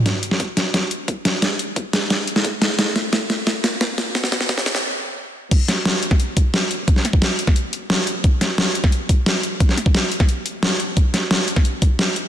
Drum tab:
CC |----------------|----------------|----------------|----------------|
HH |x-x-x-x-x-x-x-x-|x-x-x-x-x-x-x-x-|x-x-x-x-x-x-x-x-|x-x-x-x---------|
SD |o--o--o-o-----o-|o-----o-o--o--o-|o-o-o-o-o-o-o-o-|oooooooo--------|
BD |o---o---o---o---|o---o---o---o---|o---o---o---o---|o---o-----------|

CC |x---------------|----------------|----------------|----------------|
HH |x-x-x-x-x-x-x-x-|x-x-x-x-x-x-x-x-|x-x-x-x-x-x-x-x-|x-x-x-x-x-x-x-x-|
SD |--o-o--o----o---|-oo-o--o----o---|--o-o--o----o---|-oo-o--o----o---|
BD |o------o--o-----|o--o---o--------|o------o--o-----|o--o---o--------|

CC |----------------|
HH |x-x-x-x-x-x-x-x-|
SD |--o-o--o----o---|
BD |o------o--o-----|